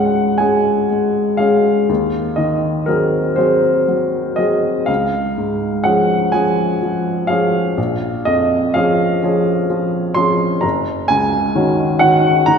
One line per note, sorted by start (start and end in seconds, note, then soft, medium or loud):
0.00 1.85 C#2 soft
0.00 0.19 G#2 soft
0.00 0.35 G#3 soft
0.00 0.35 C#4 soft
0.00 0.36 G#4 soft
0.00 1.37 F5 medium
0.00 0.38 F#5 medium
0.38 0.86 G#3 soft
0.38 0.86 C#4 soft
0.38 0.86 G#4 soft
0.38 1.39 G#5 medium
0.90 1.38 G#3 soft
1.37 1.85 G#3 soft
1.37 1.85 C#4 soft
1.37 1.85 G#4 soft
1.37 2.37 F5 medium
1.89 4.85 D#2 soft
2.36 3.18 D#3 soft
2.36 2.87 D#5 soft
2.86 3.34 F#3 soft
2.86 3.35 C4 soft
2.86 3.35 G#4 soft
2.86 3.37 A#4 soft
3.36 3.84 F#3 soft
3.36 3.84 C4 soft
3.36 3.85 G#4 soft
3.36 4.37 C5 soft
3.88 4.37 F#3 soft
4.36 4.84 F#3 soft
4.36 4.85 C4 soft
4.36 4.85 G#4 soft
4.36 4.87 D#5 medium
4.86 7.73 C#2 soft
4.86 5.85 F5 medium
5.38 6.15 G#2 soft
5.84 6.30 F3 soft
5.84 6.30 C#4 soft
5.84 6.30 G#4 soft
5.84 6.33 F#5 medium
6.32 6.77 F3 soft
6.32 6.77 C#4 soft
6.32 6.78 G#4 soft
6.32 7.28 G#5 medium
6.83 7.28 F3 soft
7.27 7.74 F3 soft
7.27 7.74 C#4 soft
7.27 7.74 G#4 soft
7.27 8.26 F5 medium
7.77 10.59 A#1 soft
8.25 9.04 F2 soft
8.25 8.75 D#5 medium
8.74 9.19 F3 soft
8.74 9.19 C#4 soft
8.74 9.20 G#4 soft
8.74 10.15 F5 medium
9.23 9.66 F3 soft
9.23 9.66 C#4 soft
9.23 9.66 G#4 soft
9.70 10.15 F3 soft
10.14 10.59 F3 soft
10.14 10.60 C#4 soft
10.14 10.60 G#4 soft
10.14 10.63 C6 medium
10.61 12.58 F#1 soft
10.61 11.09 A#5 medium
11.08 11.84 C#2 soft
11.08 12.01 G#5 medium
11.55 11.98 D#3 soft
11.55 11.98 C#4 soft
11.55 11.98 F#4 soft
11.99 12.45 D#3 soft
11.99 12.45 C#4 soft
11.99 12.45 F#4 soft
11.99 12.47 F#5 medium
12.46 12.58 D#3 soft
12.46 12.58 A#5 medium